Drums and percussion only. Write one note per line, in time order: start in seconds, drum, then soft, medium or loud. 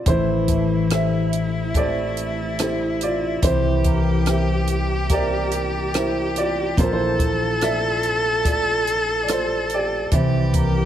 0.06 kick medium
0.06 closed hi-hat medium
0.48 kick medium
0.48 closed hi-hat soft
0.90 cross-stick medium
0.90 closed hi-hat medium
1.33 closed hi-hat soft
1.74 kick medium
1.74 closed hi-hat medium
2.17 closed hi-hat soft
2.59 cross-stick medium
2.59 closed hi-hat medium
3.01 closed hi-hat soft
3.42 kick medium
3.42 closed hi-hat medium
3.84 kick medium
3.84 closed hi-hat soft
4.26 cross-stick medium
4.26 closed hi-hat medium
4.67 closed hi-hat soft
5.09 kick medium
5.09 closed hi-hat medium
5.51 closed hi-hat soft
5.94 cross-stick medium
5.94 closed hi-hat medium
6.36 closed hi-hat soft
6.77 kick medium
6.77 closed hi-hat medium
7.19 kick medium
7.19 closed hi-hat soft
7.61 cross-stick medium
7.61 closed hi-hat medium
8.03 closed hi-hat soft
8.45 kick medium
8.45 closed hi-hat medium
8.87 closed hi-hat soft
9.28 cross-stick medium
9.28 closed hi-hat medium
9.70 closed hi-hat soft
10.11 kick medium
10.11 closed hi-hat medium
10.54 kick medium
10.54 closed hi-hat soft